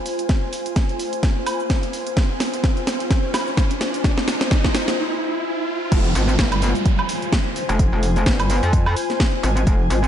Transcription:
Already playing: ambient pad F4 C5 G#5, riser
0.06 open hi-hat, cabasa
0.19 closed hi-hat, cabasa
0.29 kick, snare, closed hi-hat, cabasa
0.53 open hi-hat, cabasa
0.66 closed hi-hat, cabasa
0.76 kick, snare, closed hi-hat, cabasa
0.89 closed hi-hat
0.99 open hi-hat, cabasa
1.13 closed hi-hat, cabasa
1.23 kick, snare, closed hi-hat, cabasa
1.47 open hi-hat, cabasa, high woodblock
1.60 cabasa
1.70 kick, snare, closed hi-hat, cabasa
1.83 closed hi-hat
1.93 open hi-hat, cabasa
2.07 closed hi-hat, cabasa
2.17 kick, snare, closed hi-hat, cabasa
2.40 snare, open hi-hat, cabasa
2.54 closed hi-hat, cabasa
2.64 kick, snare, closed hi-hat, cabasa
2.77 closed hi-hat
2.87 snare, open hi-hat, cabasa
3.00 closed hi-hat, cabasa
3.11 kick, snare, closed hi-hat, cabasa
3.34 snare, open hi-hat, cabasa, high woodblock
3.47 cabasa
3.57 kick, snare, closed hi-hat, cabasa
3.71 closed hi-hat
3.81 snare, open hi-hat, cabasa
3.94 closed hi-hat, cabasa
4.04 kick, snare, closed hi-hat, cabasa
4.18 snare
4.28 snare, open hi-hat, cabasa
4.41 snare, closed hi-hat, cabasa
4.51 kick, snare, closed hi-hat, cabasa
4.64 kick, snare, closed hi-hat
4.75 snare, open hi-hat, cabasa
4.88 snare, closed hi-hat, cabasa
5.92 wobble bass F1, ambient pad F4, kick, closed hi-hat, crash, downlifter, cabasa
6.15 wobble bass G#1, open hi-hat, cabasa
6.29 closed hi-hat, cabasa
6.34 ambient pad G#5
6.39 wobble bass G1, kick, snare, closed hi-hat, cabasa
6.52 closed hi-hat, high woodblock
6.57 ambient pad C5
6.62 open hi-hat, cabasa
6.75 closed hi-hat, cabasa
6.86 kick, closed hi-hat, cabasa
6.99 high woodblock
7.09 open hi-hat, cabasa
7.22 closed hi-hat, cabasa
7.32 kick, snare, closed hi-hat, cabasa
7.56 open hi-hat, cabasa
7.69 wobble bass F1, closed hi-hat, cabasa
7.79 kick, closed hi-hat, cabasa
7.93 wobble bass F1
8.03 open hi-hat, cabasa
8.16 closed hi-hat, cabasa
8.26 wobble bass G1, kick, snare, closed hi-hat, cabasa
8.40 closed hi-hat, high woodblock
8.50 open hi-hat, cabasa
8.63 wobble bass F2, closed hi-hat, cabasa
8.73 kick, closed hi-hat, cabasa
8.86 high woodblock
8.97 open hi-hat, cabasa
9.10 snare, closed hi-hat, cabasa
9.20 kick, snare, closed hi-hat, cabasa
9.43 wobble bass G#1, open hi-hat, cabasa
9.57 closed hi-hat, cabasa
9.67 wobble bass F1, kick, closed hi-hat, cabasa
9.90 wobble bass G#1, open hi-hat, cabasa
10.04 closed hi-hat, cabasa

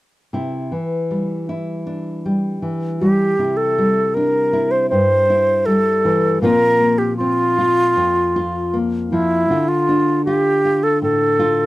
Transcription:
0.33 nylon-string guitar C3 E4
0.72 nylon-string guitar E3
1.11 nylon-string guitar G3
1.49 nylon-string guitar E4
1.87 nylon-string guitar D4
2.26 nylon-string guitar G3
2.62 nylon-string guitar E3
3.00 nylon-string guitar G3, flute G4
3.38 nylon-string guitar C3 E4
3.57 flute A4
3.78 nylon-string guitar G3
4.14 nylon-string guitar D4, flute A#4
4.53 nylon-string guitar E4
4.71 flute C5
4.89 nylon-string guitar G2, flute C5
5.30 nylon-string guitar E4
5.66 nylon-string guitar G3, flute A4
6.05 nylon-string guitar E3
6.42 nylon-string guitar A#2 F3 A#3 C4 F4, flute A#4
6.80 nylon-string guitar A#3
6.98 flute G4
7.17 nylon-string guitar C4, flute F4
7.58 nylon-string guitar F4
7.96 nylon-string guitar F2
8.36 nylon-string guitar F4
8.73 nylon-string guitar A#3
9.10 nylon-string guitar F3, flute E4
9.50 nylon-string guitar D3 F4
9.68 flute F4
9.89 nylon-string guitar D4
10.25 nylon-string guitar F4, flute G4
10.65 nylon-string guitar F4
10.83 flute A4
11.02 nylon-string guitar A2, flute A4
11.39 nylon-string guitar F4

